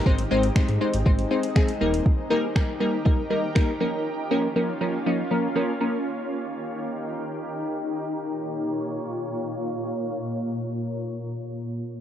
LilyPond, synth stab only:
\new Staff \with { instrumentName = "Synth stab" } { \time 4/4 \key bes \dorian \tempo 4 = 120 <aes c' ees' c''>8 <aes c' ees' c''>8 <aes c' ees' c''>8 <aes c' ees' c''>8 <aes c' ees' c''>8 <aes c' ees' c''>8 <aes c' ees' aes'>8 <g bes ees' bes'>8~ | <g bes ees' bes'>8 <g bes ees' bes'>8 <g bes ees' bes'>8 <g bes ees' bes'>8 <g bes ees' bes'>8 <g bes ees' bes'>8 <g bes ees' bes'>8 <f bes des' bes'>8~ | <f bes des' bes'>8 <f bes des' bes'>8 <f bes des' bes'>8 <f bes des' bes'>8 <f bes des' ees'>8 <f bes des' bes'>8 <f bes des' bes'>8 <f bes des' bes'>8 | r1 |
r1 | r1 | }